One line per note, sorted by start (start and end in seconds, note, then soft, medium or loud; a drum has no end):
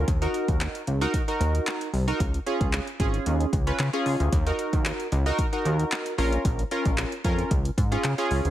0.08 0.27 D#2 loud
0.08 kick loud
0.08 closed hi-hat medium
0.22 0.82 D#4 medium
0.22 0.82 F#4 medium
0.22 0.83 A#4 loud
0.22 closed hi-hat medium
0.34 closed hi-hat medium
0.48 0.68 D#2 medium
0.48 kick loud
0.48 closed hi-hat soft
0.61 clap loud
0.61 closed hi-hat loud
0.75 closed hi-hat medium
0.87 1.07 C#2 medium
0.87 closed hi-hat medium
1.01 1.21 D#4 loud
1.01 1.21 F#4 medium
1.01 1.22 A#4 loud
1.01 closed hi-hat medium
1.14 kick medium
1.14 closed hi-hat loud
1.28 1.88 D#4 medium
1.28 1.89 F#4 medium
1.28 1.89 A#4 loud
1.28 closed hi-hat medium
1.40 1.60 D#2 medium
1.40 closed hi-hat medium
1.55 closed hi-hat medium
1.67 clap loud
1.67 closed hi-hat medium
1.81 closed hi-hat medium
1.93 2.13 C2 medium
1.93 open hi-hat medium
2.08 2.20 D#4 loud
2.08 2.20 F#4 medium
2.08 2.20 A#4 loud
2.08 closed hi-hat medium
2.20 2.39 C#2 loud
2.20 kick loud
2.20 closed hi-hat loud
2.34 closed hi-hat medium
2.46 2.88 C#4 medium
2.46 2.88 F4 medium
2.46 2.88 G#4 loud
2.46 closed hi-hat medium
2.61 2.80 C#2 medium
2.61 kick medium
2.61 closed hi-hat medium
2.73 clap loud
2.73 closed hi-hat loud
2.87 closed hi-hat medium
3.00 3.19 G#1 medium
3.00 3.51 C#4 loud
3.00 3.51 F4 medium
3.00 3.51 G#4 loud
3.00 kick medium
3.00 closed hi-hat medium
3.14 closed hi-hat medium
3.26 3.46 D#2 loud
3.26 closed hi-hat loud
3.40 closed hi-hat medium
3.53 3.72 C#2 medium
3.53 kick loud
3.53 closed hi-hat medium
3.67 3.87 C#4 medium
3.67 3.87 F4 medium
3.67 3.87 B4 loud
3.67 closed hi-hat medium
3.79 3.90 C#3 loud
3.79 clap loud
3.79 closed hi-hat medium
3.93 4.32 C#4 loud
3.93 4.33 F4 medium
3.93 4.33 G#4 loud
3.93 closed hi-hat medium
4.06 4.16 C#2 medium
4.06 open hi-hat medium
4.20 4.29 D2 medium
4.20 closed hi-hat medium
4.32 4.52 D#2 loud
4.32 kick loud
4.32 closed hi-hat loud
4.46 5.07 D#4 medium
4.46 5.07 F#4 medium
4.46 5.07 A#4 loud
4.46 closed hi-hat medium
4.59 closed hi-hat medium
4.73 4.92 D#2 loud
4.73 kick medium
4.73 closed hi-hat soft
4.85 clap loud
4.85 closed hi-hat loud
5.00 closed hi-hat medium
5.12 5.31 C#2 loud
5.12 closed hi-hat medium
5.26 5.46 D#4 loud
5.26 5.46 F#4 loud
5.26 5.46 A#4 loud
5.26 closed hi-hat medium
5.39 kick loud
5.39 closed hi-hat loud
5.53 6.13 D#4 medium
5.53 6.13 F#4 medium
5.53 6.13 A#4 medium
5.53 closed hi-hat medium
5.65 5.85 D#2 medium
5.65 closed hi-hat medium
5.79 closed hi-hat medium
5.92 clap loud
5.92 closed hi-hat medium
6.06 closed hi-hat medium
6.18 6.38 A#1 loud
6.18 6.61 C#4 loud
6.18 6.62 F4 medium
6.18 6.62 A#4 loud
6.18 open hi-hat medium
6.32 closed hi-hat medium
6.45 6.64 A#1 loud
6.45 kick loud
6.45 closed hi-hat loud
6.59 closed hi-hat medium
6.71 7.13 C#4 medium
6.71 7.13 F4 medium
6.71 7.13 A#4 loud
6.71 closed hi-hat medium
6.85 7.05 A#1 medium
6.85 kick medium
6.85 closed hi-hat medium
6.98 clap loud
6.98 closed hi-hat loud
7.12 closed hi-hat medium
7.24 7.44 F2 medium
7.24 7.51 C#4 loud
7.24 7.51 F4 medium
7.24 7.51 A#4 loud
7.24 kick medium
7.24 closed hi-hat medium
7.39 closed hi-hat medium
7.51 7.70 C#2 loud
7.51 kick medium
7.51 closed hi-hat medium
7.65 closed hi-hat medium
7.78 7.97 G#2 loud
7.78 kick medium
7.78 closed hi-hat medium
7.91 8.12 C#4 medium
7.91 8.12 F4 medium
7.91 8.12 G#4 loud
7.91 closed hi-hat medium
8.04 8.14 C#3 medium
8.04 clap loud
8.04 closed hi-hat medium
8.18 8.50 C#4 loud
8.18 8.50 F4 medium
8.18 8.50 G#4 loud
8.18 closed hi-hat medium
8.31 8.41 C#2 medium
8.31 open hi-hat medium
8.45 8.50 D2 medium
8.45 closed hi-hat medium